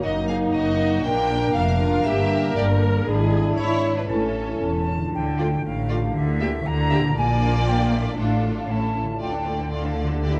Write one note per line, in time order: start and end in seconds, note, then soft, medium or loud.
0.00 0.46 F#1 medium
0.00 1.06 F#2 medium
0.00 0.45 F#2 medium
0.00 0.26 A#3 soft
0.00 1.00 A#3 soft
0.00 2.02 A#3 medium
0.00 1.02 D#4 medium
0.00 1.05 D#4 soft
0.00 1.04 D#4 medium
0.00 1.06 F#4 soft
0.00 0.11 F#4 medium
0.00 0.28 D#5 medium
0.00 0.27 D#5 medium
0.00 1.01 A#5 soft
0.27 0.77 A#3 soft
0.27 0.37 G#4 medium
0.27 0.52 F5 medium
0.27 0.37 F5 medium
0.53 0.96 F#1 medium
0.53 0.96 F#2 medium
0.53 1.06 D#4 soft
0.53 1.04 F#4 medium
0.53 1.03 D#5 medium
0.53 1.01 D#5 medium
0.78 1.28 A#3 soft
1.03 1.47 A#1 medium
1.03 2.07 A#2 medium
1.03 1.47 A#2 medium
1.03 3.03 A#3 medium
1.03 2.90 D4 medium
1.03 3.06 D4 medium
1.03 1.53 D4 medium
1.03 1.55 A#4 medium
1.03 1.54 G5 medium
1.03 1.51 G5 medium
1.03 2.82 A#5 medium
1.29 1.79 A#3 soft
1.54 1.97 F1 medium
1.54 1.97 F2 medium
1.54 2.55 D4 medium
1.54 1.62 D4 medium
1.54 2.05 A#4 medium
1.54 1.61 F5 medium
1.54 2.06 F5 medium
1.62 1.69 E5 medium
1.69 2.03 F5 medium
1.80 2.29 A#3 soft
1.80 2.05 F4 medium
2.04 2.48 G1 medium
2.04 3.09 G2 medium
2.04 2.48 G2 medium
2.04 3.05 A#3 medium
2.04 2.13 G4 medium
2.04 2.55 G4 medium
2.04 2.52 E5 medium
2.04 2.57 E5 medium
2.30 2.80 A#3 soft
2.30 3.05 A#4 medium
2.56 2.99 G1 medium
2.56 2.98 G2 medium
2.56 3.31 D4 medium
2.56 2.64 G4 medium
2.56 2.80 D5 medium
2.56 2.65 D5 medium
2.81 3.09 A#3 medium
3.06 3.49 G#1 medium
3.06 4.11 G#2 medium
3.06 3.50 G#2 medium
3.06 4.06 D4 medium
3.06 3.80 D4 medium
3.06 4.84 E4 medium
3.06 4.06 E4 medium
3.06 3.58 G#4 medium
3.06 4.08 B5 medium
3.32 3.83 D4 soft
3.57 4.01 G#1 medium
3.57 4.01 G#2 medium
3.57 4.09 E4 medium
3.57 4.60 E4 soft
3.57 3.94 E4 medium
3.57 3.94 C#5 medium
3.84 4.12 D4 soft
3.97 4.10 D4 medium
3.97 4.10 B4 soft
3.97 4.09 B4 medium
4.09 4.53 A1 medium
4.09 5.15 A2 soft
4.09 4.53 A2 medium
4.09 4.84 C#4 soft
4.09 4.86 C#4 medium
4.09 4.88 C#4 medium
4.09 4.86 E4 medium
4.09 4.88 A4 medium
4.09 4.84 A4 medium
4.09 4.61 A5 medium
4.36 4.86 C#4 soft
4.61 5.05 E1 soft
4.61 5.05 E2 medium
4.61 5.15 E4 soft
4.61 5.10 A5 medium
4.88 5.16 C#4 soft
4.96 5.96 D3 soft
5.00 7.02 D4 soft
5.04 6.13 F4 soft
5.09 6.15 A4 soft
5.14 5.56 D2 medium
5.14 5.56 D3 medium
5.14 5.65 G5 medium
5.39 5.47 A3 soft
5.39 5.49 A3 soft
5.39 5.47 F4 soft
5.39 5.48 F4 soft
5.39 5.47 D5 soft
5.65 6.07 A1 medium
5.65 6.07 A2 medium
5.65 6.15 F5 medium
5.89 5.98 A3 medium
5.89 6.00 A3 soft
5.89 5.98 F4 medium
5.89 6.00 F4 soft
5.89 5.97 D5 medium
5.97 7.09 D3 medium
6.02 7.12 E4 soft
6.06 7.14 G4 medium
6.11 7.11 A#4 medium
6.15 6.58 D2 medium
6.15 6.57 D3 medium
6.15 6.65 E5 medium
6.40 6.48 A#3 medium
6.40 6.50 A#3 medium
6.40 6.49 G4 medium
6.40 6.50 G4 medium
6.40 6.49 E5 medium
6.66 7.08 D2 medium
6.66 7.08 D3 medium
6.66 7.16 A#5 loud
6.91 6.99 A#3 medium
6.91 7.01 A#3 medium
6.91 7.01 G4 medium
6.91 7.00 G4 medium
6.91 6.99 E5 medium
6.99 8.11 A#2 medium
7.03 8.65 D4 medium
7.08 8.08 F4 soft
7.12 8.18 A#4 soft
7.17 8.15 A#1 medium
7.17 8.14 A#2 medium
7.17 8.14 A#3 medium
7.17 8.15 F4 medium
7.17 8.14 D5 medium
7.17 7.67 G#5 medium
7.43 7.52 A#3 medium
7.43 7.52 D4 medium
7.68 7.92 G5 medium
7.92 8.03 A#3 soft
7.92 8.03 D4 soft
7.92 8.17 E5 medium
8.01 8.50 A2 soft
8.05 8.55 A3 soft
8.10 8.67 F4 soft
8.14 8.69 D5 soft
8.14 8.69 F5 medium
8.18 8.69 A1 medium
8.18 8.68 A2 medium
8.18 8.69 D4 medium
8.18 8.68 F4 soft
8.18 8.69 A4 medium
8.45 8.54 A3 soft
8.45 8.54 D4 soft
8.52 9.14 A2 soft
8.56 9.06 A3 soft
8.61 9.18 E4 soft
8.65 9.20 C#5 soft
8.69 9.00 A1 soft
8.69 9.00 A2 soft
8.69 9.00 C#4 soft
8.69 9.00 E4 soft
8.69 9.00 A4 soft
8.69 9.21 A5 medium
8.95 9.04 A3 soft
8.95 9.04 C#4 soft
9.02 10.02 D3 soft
9.07 10.17 A3 soft
9.11 10.19 F4 soft
9.16 10.40 D5 soft
9.20 10.40 D2 medium
9.20 10.40 D3 medium
9.20 9.32 A3 soft
9.20 9.33 F4 soft
9.20 9.32 D5 soft
9.20 9.70 G5 medium
9.32 9.45 D4 soft
9.32 9.46 D4 soft
9.32 9.46 A4 soft
9.46 9.59 A3 soft
9.46 9.56 A3 soft
9.46 9.56 D4 soft
9.46 9.58 F4 soft
9.46 9.59 D5 soft
9.58 9.71 D4 soft
9.58 9.72 A4 soft
9.71 9.83 A3 soft
9.71 9.83 F4 soft
9.71 9.83 D5 soft
9.71 10.00 F5 medium
9.83 9.96 D4 soft
9.83 9.97 D4 soft
9.83 9.97 A4 soft
9.96 10.09 A3 soft
9.96 10.06 A3 soft
9.96 10.06 D4 soft
9.96 10.09 F4 soft
9.96 10.09 D5 soft
10.03 10.40 D3 medium
10.08 10.40 A#3 soft
10.08 10.20 D4 soft
10.08 10.22 D4 soft
10.08 10.22 A4 soft
10.12 10.40 G4 soft
10.17 10.40 E5 soft
10.21 10.33 D4 medium
10.21 10.34 G4 soft
10.21 10.34 D5 medium
10.21 10.40 E5 medium
10.34 10.40 D4 medium
10.34 10.40 E4 soft
10.34 10.40 A#4 soft